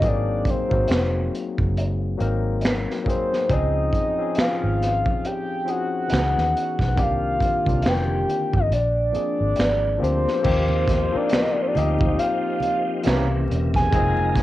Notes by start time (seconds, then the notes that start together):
0.00 G#1 F#3 A#3 C4 D#4, kick, closed hi-hat
0.05 G#4 D5
0.45 kick, closed hi-hat
0.50 C5
0.69 G#1 F#3 A#3 C4 D#4, kick
0.73 F#4
0.88 F1, finger snap, snare, closed hi-hat
1.35 closed hi-hat
1.58 F#1, kick
1.77 closed hi-hat
2.18 G#1 F#3 A#3 C4 D#4 A#4, closed hi-hat
2.61 snare, closed hi-hat
2.66 finger snap
2.91 snare
3.04 F#3 A#3 C4 D#4, kick
3.08 G#4 C5, closed hi-hat
3.33 snare
3.49 C#2 F3 C4 C#4 D#4 G#4, kick, closed hi-hat
3.53 D#5
3.93 kick, closed hi-hat
4.18 F3 C4 C#4 D#4 G#4
4.35 finger snap, muted fingered electric bass stroke, snare, closed hi-hat
4.40 F5
4.63 G#1
4.82 snare, closed hi-hat
5.06 kick
5.25 G5, closed hi-hat
5.65 F3 C4 C#4 D#4, closed hi-hat
5.69 G#4 F#5
6.08 E3 B3 C#4 D#4, closed hi-hat
6.12 C#2 F#4, finger snap, snare
6.19 G#4
6.37 D#2, snare
6.57 closed hi-hat
6.79 B1, kick, snare
6.95 C2 D#3 A#3 C4 D4 G4, kick, closed hi-hat
7.02 F5
7.40 kick, closed hi-hat
7.65 C2 D3 A#3 C4 D4, kick
7.69 D#3 F4, closed hi-hat
7.82 F1, finger snap, snare, closed hi-hat
7.88 G5
8.30 closed hi-hat
8.54 G1 D#5, kick
8.71 A#1 D5, closed hi-hat
9.12 F3 A#3 C4 D4 G#4, muted fingered electric bass stroke, closed hi-hat
9.41 G#1
9.56 G#1, snare, closed hi-hat
9.60 finger snap
9.98 D2 F3 A#3 C4 D4
10.02 G4 C5, closed hi-hat
10.28 snare
10.42 D#2 F3 A#3 C4 D#4 F4 G4, kick, crash, muted conga
10.46 G4
10.69 muted conga, high conga
10.88 kick, snare, closed hi-hat
11.12 F3 A#3 C4 D#4 D5, muted fingered electric bass stroke
11.16 A#4
11.29 finger snap, snare, closed hi-hat, muted conga, high conga
11.41 D#5
11.51 D5
11.62 C5
11.67 D5
11.74 D2 F3 A#3 C4 D#4 D#5, closed hi-hat, high conga, low conga
11.78 G4
11.99 kick, low conga
12.19 F5, closed hi-hat
12.60 closed hi-hat, high conga
13.04 C2 C3 C#3 E3 G3 A#3 C4 C#4 E4 F#4, snare, closed hi-hat
13.08 A#4, finger snap
13.14 G4
13.48 E1, closed hi-hat, high conga, low conga
13.74 G#5, kick, snare, closed hi-hat
13.91 F1 F3 G#3 A#3 C4 D#4 F4 A#5, kick, closed hi-hat, muted conga
13.95 G#4
14.17 high conga
14.36 kick, snare, closed hi-hat